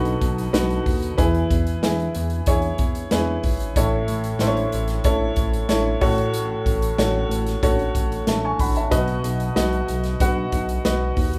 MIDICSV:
0, 0, Header, 1, 4, 480
1, 0, Start_track
1, 0, Key_signature, 4, "major"
1, 0, Tempo, 644468
1, 877, Time_signature, 4, 2, 24, 8
1, 8481, End_track
2, 0, Start_track
2, 0, Title_t, "Upright piano"
2, 0, Program_c, 0, 0
2, 0, Control_c, 0, 64, 127
2, 0, Note_on_c, 0, 47, 77
2, 0, Note_on_c, 0, 63, 83
2, 0, Note_on_c, 0, 66, 79
2, 0, Note_on_c, 0, 69, 80
2, 0, Note_on_c, 0, 71, 94
2, 303, Note_off_c, 0, 63, 0
2, 303, Note_off_c, 0, 71, 0
2, 304, Note_off_c, 0, 66, 0
2, 396, Note_on_c, 0, 71, 92
2, 397, Note_on_c, 0, 66, 84
2, 400, Note_on_c, 0, 63, 89
2, 783, Note_off_c, 0, 71, 0
2, 784, Note_off_c, 0, 66, 0
2, 785, Note_off_c, 0, 63, 0
2, 876, Note_on_c, 0, 71, 100
2, 878, Note_on_c, 0, 64, 86
2, 878, Note_on_c, 0, 68, 83
2, 879, Note_on_c, 0, 52, 74
2, 888, Control_c, 0, 64, 0
2, 889, Note_off_c, 0, 47, 0
2, 895, Note_off_c, 0, 69, 0
2, 999, Control_c, 0, 64, 127
2, 1263, Note_off_c, 0, 71, 0
2, 1264, Note_off_c, 0, 64, 0
2, 1264, Note_off_c, 0, 68, 0
2, 1363, Note_on_c, 0, 64, 77
2, 1365, Note_on_c, 0, 71, 79
2, 1366, Note_on_c, 0, 68, 69
2, 1569, Note_off_c, 0, 52, 0
2, 1747, Note_off_c, 0, 64, 0
2, 1748, Note_off_c, 0, 68, 0
2, 1748, Note_off_c, 0, 71, 0
2, 1843, Note_on_c, 0, 64, 78
2, 1844, Note_on_c, 0, 68, 77
2, 1844, Note_on_c, 0, 73, 95
2, 2227, Note_off_c, 0, 64, 0
2, 2227, Note_off_c, 0, 73, 0
2, 2228, Note_off_c, 0, 68, 0
2, 2322, Note_on_c, 0, 71, 89
2, 2324, Note_on_c, 0, 64, 76
2, 2324, Note_on_c, 0, 68, 78
2, 2707, Note_off_c, 0, 71, 0
2, 2708, Note_off_c, 0, 64, 0
2, 2708, Note_off_c, 0, 68, 0
2, 2805, Note_on_c, 0, 64, 78
2, 2806, Note_on_c, 0, 73, 93
2, 2807, Note_on_c, 0, 45, 75
2, 2808, Note_on_c, 0, 69, 79
2, 2809, Control_c, 0, 64, 0
2, 2925, Control_c, 0, 64, 127
2, 3189, Note_off_c, 0, 64, 0
2, 3189, Note_off_c, 0, 73, 0
2, 3190, Note_off_c, 0, 69, 0
2, 3282, Note_on_c, 0, 64, 82
2, 3282, Note_on_c, 0, 72, 69
2, 3284, Note_on_c, 0, 69, 74
2, 3329, Note_off_c, 0, 72, 0
2, 3333, Note_on_c, 0, 73, 88
2, 3494, Note_off_c, 0, 45, 0
2, 3667, Note_off_c, 0, 64, 0
2, 3668, Note_off_c, 0, 69, 0
2, 3692, Note_off_c, 0, 73, 0
2, 3759, Note_on_c, 0, 64, 82
2, 3760, Note_on_c, 0, 73, 101
2, 3762, Note_on_c, 0, 69, 85
2, 4145, Note_off_c, 0, 64, 0
2, 4146, Note_off_c, 0, 73, 0
2, 4147, Note_off_c, 0, 69, 0
2, 4237, Note_on_c, 0, 64, 85
2, 4240, Note_on_c, 0, 69, 80
2, 4240, Note_on_c, 0, 73, 91
2, 4468, Note_off_c, 0, 73, 0
2, 4469, Note_off_c, 0, 69, 0
2, 4478, Note_off_c, 0, 64, 0
2, 4479, Note_on_c, 0, 66, 91
2, 4479, Note_on_c, 0, 73, 105
2, 4480, Note_on_c, 0, 45, 74
2, 4480, Note_on_c, 0, 69, 87
2, 4489, Control_c, 0, 64, 0
2, 4627, Control_c, 0, 64, 127
2, 5059, Note_off_c, 0, 66, 0
2, 5059, Note_off_c, 0, 69, 0
2, 5059, Note_off_c, 0, 73, 0
2, 5170, Note_off_c, 0, 45, 0
2, 5201, Note_on_c, 0, 69, 79
2, 5202, Note_on_c, 0, 66, 78
2, 5203, Note_on_c, 0, 73, 96
2, 5587, Note_off_c, 0, 66, 0
2, 5587, Note_off_c, 0, 69, 0
2, 5588, Note_off_c, 0, 73, 0
2, 5683, Note_on_c, 0, 66, 84
2, 5683, Note_on_c, 0, 69, 77
2, 5683, Note_on_c, 0, 73, 94
2, 6067, Note_off_c, 0, 69, 0
2, 6068, Note_off_c, 0, 66, 0
2, 6068, Note_off_c, 0, 73, 0
2, 6169, Note_on_c, 0, 81, 64
2, 6172, Note_on_c, 0, 76, 51
2, 6279, Note_off_c, 0, 81, 0
2, 6280, Note_off_c, 0, 76, 0
2, 6290, Note_on_c, 0, 85, 71
2, 6295, Note_on_c, 0, 80, 64
2, 6399, Note_off_c, 0, 85, 0
2, 6401, Note_off_c, 0, 80, 0
2, 6406, Note_on_c, 0, 83, 73
2, 6413, Note_on_c, 0, 78, 57
2, 6517, Note_off_c, 0, 83, 0
2, 6521, Note_off_c, 0, 78, 0
2, 6526, Note_on_c, 0, 81, 63
2, 6531, Note_on_c, 0, 76, 55
2, 6637, Note_on_c, 0, 66, 81
2, 6637, Note_on_c, 0, 71, 89
2, 6638, Note_on_c, 0, 47, 73
2, 6639, Note_on_c, 0, 75, 96
2, 6648, Control_c, 0, 64, 0
2, 6751, Note_off_c, 0, 81, 0
2, 6754, Note_off_c, 0, 76, 0
2, 6778, Control_c, 0, 64, 127
2, 7024, Note_off_c, 0, 66, 0
2, 7025, Note_off_c, 0, 71, 0
2, 7025, Note_off_c, 0, 75, 0
2, 7118, Note_on_c, 0, 71, 76
2, 7120, Note_on_c, 0, 66, 89
2, 7122, Note_on_c, 0, 75, 92
2, 7329, Note_off_c, 0, 47, 0
2, 7505, Note_off_c, 0, 71, 0
2, 7506, Note_off_c, 0, 66, 0
2, 7507, Note_off_c, 0, 75, 0
2, 7606, Note_on_c, 0, 71, 80
2, 7606, Note_on_c, 0, 78, 93
2, 7607, Note_on_c, 0, 66, 90
2, 7989, Note_off_c, 0, 66, 0
2, 7989, Note_off_c, 0, 71, 0
2, 7989, Note_off_c, 0, 78, 0
2, 8079, Note_on_c, 0, 71, 84
2, 8080, Note_on_c, 0, 75, 86
2, 8082, Note_on_c, 0, 66, 82
2, 8465, Note_off_c, 0, 71, 0
2, 8466, Note_off_c, 0, 66, 0
2, 8466, Note_off_c, 0, 75, 0
2, 8481, End_track
3, 0, Start_track
3, 0, Title_t, "Analog synth bass"
3, 0, Program_c, 1, 38
3, 0, Note_on_c, 1, 35, 112
3, 115, Note_off_c, 1, 35, 0
3, 161, Note_on_c, 1, 35, 102
3, 356, Note_off_c, 1, 35, 0
3, 397, Note_on_c, 1, 35, 88
3, 594, Note_off_c, 1, 35, 0
3, 639, Note_on_c, 1, 39, 88
3, 835, Note_off_c, 1, 39, 0
3, 881, Note_on_c, 1, 40, 116
3, 1076, Note_off_c, 1, 40, 0
3, 1122, Note_on_c, 1, 40, 91
3, 1317, Note_off_c, 1, 40, 0
3, 1361, Note_on_c, 1, 40, 95
3, 1557, Note_off_c, 1, 40, 0
3, 1606, Note_on_c, 1, 40, 114
3, 1800, Note_off_c, 1, 40, 0
3, 1838, Note_on_c, 1, 40, 102
3, 2035, Note_off_c, 1, 40, 0
3, 2079, Note_on_c, 1, 40, 97
3, 2276, Note_off_c, 1, 40, 0
3, 2325, Note_on_c, 1, 40, 103
3, 2519, Note_off_c, 1, 40, 0
3, 2560, Note_on_c, 1, 32, 87
3, 2757, Note_off_c, 1, 32, 0
3, 2800, Note_on_c, 1, 33, 115
3, 2997, Note_off_c, 1, 33, 0
3, 3042, Note_on_c, 1, 33, 80
3, 3238, Note_off_c, 1, 33, 0
3, 3284, Note_on_c, 1, 33, 92
3, 3479, Note_off_c, 1, 33, 0
3, 3529, Note_on_c, 1, 33, 96
3, 3722, Note_off_c, 1, 33, 0
3, 3758, Note_on_c, 1, 33, 108
3, 3955, Note_off_c, 1, 33, 0
3, 3998, Note_on_c, 1, 33, 92
3, 4196, Note_off_c, 1, 33, 0
3, 4239, Note_on_c, 1, 33, 83
3, 4436, Note_off_c, 1, 33, 0
3, 4482, Note_on_c, 1, 33, 86
3, 4874, Note_off_c, 1, 33, 0
3, 4958, Note_on_c, 1, 33, 86
3, 5156, Note_off_c, 1, 33, 0
3, 5200, Note_on_c, 1, 33, 99
3, 5397, Note_off_c, 1, 33, 0
3, 5434, Note_on_c, 1, 33, 107
3, 5633, Note_off_c, 1, 33, 0
3, 5681, Note_on_c, 1, 33, 100
3, 5877, Note_off_c, 1, 33, 0
3, 5923, Note_on_c, 1, 33, 90
3, 6118, Note_off_c, 1, 33, 0
3, 6160, Note_on_c, 1, 33, 90
3, 6357, Note_off_c, 1, 33, 0
3, 6400, Note_on_c, 1, 33, 75
3, 6596, Note_off_c, 1, 33, 0
3, 6641, Note_on_c, 1, 35, 100
3, 6837, Note_off_c, 1, 35, 0
3, 6878, Note_on_c, 1, 35, 108
3, 7076, Note_off_c, 1, 35, 0
3, 7123, Note_on_c, 1, 35, 100
3, 7319, Note_off_c, 1, 35, 0
3, 7366, Note_on_c, 1, 35, 96
3, 7560, Note_off_c, 1, 35, 0
3, 7599, Note_on_c, 1, 35, 101
3, 7796, Note_off_c, 1, 35, 0
3, 7839, Note_on_c, 1, 35, 102
3, 8036, Note_off_c, 1, 35, 0
3, 8089, Note_on_c, 1, 35, 84
3, 8282, Note_off_c, 1, 35, 0
3, 8319, Note_on_c, 1, 39, 86
3, 8481, Note_off_c, 1, 39, 0
3, 8481, End_track
4, 0, Start_track
4, 0, Title_t, "Drums"
4, 38, Note_on_c, 9, 42, 37
4, 113, Note_off_c, 9, 42, 0
4, 160, Note_on_c, 9, 36, 88
4, 160, Note_on_c, 9, 42, 70
4, 235, Note_off_c, 9, 36, 0
4, 235, Note_off_c, 9, 42, 0
4, 285, Note_on_c, 9, 42, 48
4, 360, Note_off_c, 9, 42, 0
4, 402, Note_on_c, 9, 38, 106
4, 402, Note_on_c, 9, 42, 77
4, 476, Note_off_c, 9, 38, 0
4, 476, Note_off_c, 9, 42, 0
4, 524, Note_on_c, 9, 42, 33
4, 599, Note_off_c, 9, 42, 0
4, 642, Note_on_c, 9, 36, 86
4, 642, Note_on_c, 9, 46, 71
4, 716, Note_off_c, 9, 36, 0
4, 716, Note_off_c, 9, 46, 0
4, 762, Note_on_c, 9, 42, 48
4, 837, Note_off_c, 9, 42, 0
4, 881, Note_on_c, 9, 42, 89
4, 882, Note_on_c, 9, 36, 103
4, 956, Note_off_c, 9, 36, 0
4, 956, Note_off_c, 9, 42, 0
4, 1002, Note_on_c, 9, 42, 35
4, 1076, Note_off_c, 9, 42, 0
4, 1121, Note_on_c, 9, 36, 89
4, 1124, Note_on_c, 9, 42, 75
4, 1195, Note_off_c, 9, 36, 0
4, 1198, Note_off_c, 9, 42, 0
4, 1241, Note_on_c, 9, 42, 56
4, 1316, Note_off_c, 9, 42, 0
4, 1362, Note_on_c, 9, 38, 109
4, 1366, Note_on_c, 9, 42, 80
4, 1436, Note_off_c, 9, 38, 0
4, 1441, Note_off_c, 9, 42, 0
4, 1486, Note_on_c, 9, 42, 33
4, 1560, Note_off_c, 9, 42, 0
4, 1598, Note_on_c, 9, 42, 87
4, 1673, Note_off_c, 9, 42, 0
4, 1712, Note_on_c, 9, 42, 48
4, 1786, Note_off_c, 9, 42, 0
4, 1834, Note_on_c, 9, 42, 86
4, 1839, Note_on_c, 9, 36, 102
4, 1908, Note_off_c, 9, 42, 0
4, 1914, Note_off_c, 9, 36, 0
4, 1950, Note_on_c, 9, 42, 34
4, 2025, Note_off_c, 9, 42, 0
4, 2072, Note_on_c, 9, 42, 70
4, 2078, Note_on_c, 9, 36, 89
4, 2147, Note_off_c, 9, 42, 0
4, 2153, Note_off_c, 9, 36, 0
4, 2197, Note_on_c, 9, 42, 49
4, 2271, Note_off_c, 9, 42, 0
4, 2317, Note_on_c, 9, 38, 106
4, 2317, Note_on_c, 9, 42, 81
4, 2391, Note_off_c, 9, 38, 0
4, 2391, Note_off_c, 9, 42, 0
4, 2558, Note_on_c, 9, 46, 74
4, 2560, Note_on_c, 9, 36, 87
4, 2632, Note_off_c, 9, 46, 0
4, 2635, Note_off_c, 9, 36, 0
4, 2683, Note_on_c, 9, 42, 47
4, 2758, Note_off_c, 9, 42, 0
4, 2801, Note_on_c, 9, 36, 103
4, 2801, Note_on_c, 9, 42, 95
4, 2875, Note_off_c, 9, 36, 0
4, 2875, Note_off_c, 9, 42, 0
4, 3039, Note_on_c, 9, 42, 78
4, 3113, Note_off_c, 9, 42, 0
4, 3156, Note_on_c, 9, 42, 59
4, 3230, Note_off_c, 9, 42, 0
4, 3272, Note_on_c, 9, 38, 96
4, 3276, Note_on_c, 9, 42, 76
4, 3346, Note_off_c, 9, 38, 0
4, 3350, Note_off_c, 9, 42, 0
4, 3402, Note_on_c, 9, 42, 36
4, 3477, Note_off_c, 9, 42, 0
4, 3518, Note_on_c, 9, 42, 77
4, 3593, Note_off_c, 9, 42, 0
4, 3632, Note_on_c, 9, 42, 49
4, 3637, Note_on_c, 9, 38, 35
4, 3706, Note_off_c, 9, 42, 0
4, 3712, Note_off_c, 9, 38, 0
4, 3755, Note_on_c, 9, 42, 81
4, 3758, Note_on_c, 9, 36, 107
4, 3829, Note_off_c, 9, 42, 0
4, 3832, Note_off_c, 9, 36, 0
4, 3993, Note_on_c, 9, 42, 63
4, 3998, Note_on_c, 9, 36, 91
4, 4067, Note_off_c, 9, 42, 0
4, 4072, Note_off_c, 9, 36, 0
4, 4122, Note_on_c, 9, 42, 51
4, 4196, Note_off_c, 9, 42, 0
4, 4238, Note_on_c, 9, 38, 102
4, 4238, Note_on_c, 9, 42, 81
4, 4312, Note_off_c, 9, 38, 0
4, 4312, Note_off_c, 9, 42, 0
4, 4478, Note_on_c, 9, 46, 75
4, 4480, Note_on_c, 9, 36, 100
4, 4552, Note_off_c, 9, 46, 0
4, 4554, Note_off_c, 9, 36, 0
4, 4602, Note_on_c, 9, 42, 49
4, 4676, Note_off_c, 9, 42, 0
4, 4719, Note_on_c, 9, 42, 92
4, 4794, Note_off_c, 9, 42, 0
4, 4960, Note_on_c, 9, 36, 86
4, 4964, Note_on_c, 9, 42, 75
4, 5035, Note_off_c, 9, 36, 0
4, 5038, Note_off_c, 9, 42, 0
4, 5081, Note_on_c, 9, 42, 58
4, 5156, Note_off_c, 9, 42, 0
4, 5202, Note_on_c, 9, 38, 112
4, 5206, Note_on_c, 9, 42, 79
4, 5277, Note_off_c, 9, 38, 0
4, 5281, Note_off_c, 9, 42, 0
4, 5447, Note_on_c, 9, 42, 84
4, 5522, Note_off_c, 9, 42, 0
4, 5560, Note_on_c, 9, 42, 52
4, 5565, Note_on_c, 9, 38, 35
4, 5634, Note_off_c, 9, 42, 0
4, 5640, Note_off_c, 9, 38, 0
4, 5681, Note_on_c, 9, 36, 108
4, 5684, Note_on_c, 9, 42, 82
4, 5756, Note_off_c, 9, 36, 0
4, 5758, Note_off_c, 9, 42, 0
4, 5803, Note_on_c, 9, 42, 35
4, 5877, Note_off_c, 9, 42, 0
4, 5920, Note_on_c, 9, 36, 88
4, 5923, Note_on_c, 9, 42, 70
4, 5995, Note_off_c, 9, 36, 0
4, 5997, Note_off_c, 9, 42, 0
4, 6047, Note_on_c, 9, 42, 48
4, 6122, Note_off_c, 9, 42, 0
4, 6161, Note_on_c, 9, 38, 109
4, 6161, Note_on_c, 9, 42, 81
4, 6235, Note_off_c, 9, 38, 0
4, 6235, Note_off_c, 9, 42, 0
4, 6401, Note_on_c, 9, 36, 89
4, 6402, Note_on_c, 9, 46, 70
4, 6476, Note_off_c, 9, 36, 0
4, 6476, Note_off_c, 9, 46, 0
4, 6523, Note_on_c, 9, 42, 50
4, 6598, Note_off_c, 9, 42, 0
4, 6640, Note_on_c, 9, 36, 100
4, 6641, Note_on_c, 9, 42, 94
4, 6715, Note_off_c, 9, 36, 0
4, 6716, Note_off_c, 9, 42, 0
4, 6760, Note_on_c, 9, 42, 37
4, 6835, Note_off_c, 9, 42, 0
4, 6883, Note_on_c, 9, 42, 88
4, 6958, Note_off_c, 9, 42, 0
4, 7001, Note_on_c, 9, 42, 50
4, 7075, Note_off_c, 9, 42, 0
4, 7121, Note_on_c, 9, 38, 112
4, 7126, Note_on_c, 9, 42, 81
4, 7196, Note_off_c, 9, 38, 0
4, 7200, Note_off_c, 9, 42, 0
4, 7244, Note_on_c, 9, 42, 32
4, 7318, Note_off_c, 9, 42, 0
4, 7361, Note_on_c, 9, 42, 76
4, 7436, Note_off_c, 9, 42, 0
4, 7475, Note_on_c, 9, 42, 47
4, 7480, Note_on_c, 9, 38, 32
4, 7549, Note_off_c, 9, 42, 0
4, 7555, Note_off_c, 9, 38, 0
4, 7599, Note_on_c, 9, 42, 85
4, 7600, Note_on_c, 9, 36, 114
4, 7673, Note_off_c, 9, 42, 0
4, 7674, Note_off_c, 9, 36, 0
4, 7838, Note_on_c, 9, 42, 75
4, 7839, Note_on_c, 9, 36, 92
4, 7912, Note_off_c, 9, 42, 0
4, 7913, Note_off_c, 9, 36, 0
4, 7960, Note_on_c, 9, 42, 47
4, 8035, Note_off_c, 9, 42, 0
4, 8080, Note_on_c, 9, 38, 107
4, 8081, Note_on_c, 9, 42, 85
4, 8155, Note_off_c, 9, 38, 0
4, 8155, Note_off_c, 9, 42, 0
4, 8317, Note_on_c, 9, 46, 72
4, 8319, Note_on_c, 9, 36, 91
4, 8391, Note_off_c, 9, 46, 0
4, 8394, Note_off_c, 9, 36, 0
4, 8441, Note_on_c, 9, 42, 54
4, 8481, Note_off_c, 9, 42, 0
4, 8481, End_track
0, 0, End_of_file